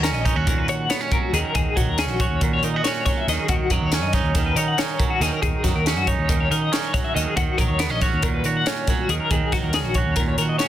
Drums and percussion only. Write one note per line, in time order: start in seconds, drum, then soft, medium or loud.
0.04 snare loud
0.04 closed hi-hat medium
0.26 kick medium
0.26 closed hi-hat medium
0.47 kick loud
0.47 closed hi-hat loud
0.68 closed hi-hat medium
0.90 snare loud
0.90 closed hi-hat medium
1.11 kick medium
1.11 closed hi-hat medium
1.34 closed hi-hat medium
1.55 kick loud
1.55 closed hi-hat medium
1.77 kick medium
1.77 closed hi-hat medium
1.98 snare loud
1.98 closed hi-hat medium
2.20 kick medium
2.20 closed hi-hat medium
2.41 kick loud
2.41 closed hi-hat medium
2.63 closed hi-hat medium
2.84 snare loud
2.84 closed hi-hat loud
3.06 kick medium
3.06 snare soft
3.06 closed hi-hat medium
3.28 snare soft
3.28 closed hi-hat medium
3.48 kick loud
3.48 closed hi-hat medium
3.70 kick medium
3.70 closed hi-hat medium
3.92 snare loud
3.92 closed hi-hat loud
4.13 kick medium
4.13 snare soft
4.13 closed hi-hat medium
4.35 kick loud
4.35 snare soft
4.35 closed hi-hat loud
4.57 closed hi-hat medium
4.78 snare loud
4.78 closed hi-hat medium
5.00 kick medium
5.00 closed hi-hat medium
5.21 snare soft
5.21 closed hi-hat medium
5.43 kick loud
5.43 closed hi-hat medium
5.64 kick medium
5.64 snare soft
5.64 closed hi-hat medium
5.86 snare loud
5.86 closed hi-hat medium
6.07 kick medium
6.07 closed hi-hat medium
6.29 kick loud
6.29 closed hi-hat loud
6.52 closed hi-hat medium
6.73 snare loud
6.73 closed hi-hat medium
6.94 kick medium
6.94 snare soft
6.94 closed hi-hat medium
7.17 closed hi-hat medium
7.37 kick loud
7.37 closed hi-hat medium
7.58 kick medium
7.58 closed hi-hat medium
7.79 snare loud
7.79 closed hi-hat loud
8.01 kick medium
8.01 snare soft
8.01 closed hi-hat medium
8.22 kick loud
8.22 closed hi-hat loud
8.44 closed hi-hat medium
8.66 snare loud
8.66 closed hi-hat medium
8.87 kick medium
8.87 snare soft
8.87 closed hi-hat medium
9.09 closed hi-hat medium
9.31 kick loud
9.31 closed hi-hat medium
9.52 kick medium
9.52 snare soft
9.52 closed hi-hat medium
9.73 snare loud
9.73 closed hi-hat loud
9.94 kick medium
9.94 closed hi-hat medium
10.16 kick loud
10.16 snare soft
10.16 closed hi-hat loud
10.38 closed hi-hat medium
10.59 snare loud
10.59 closed hi-hat medium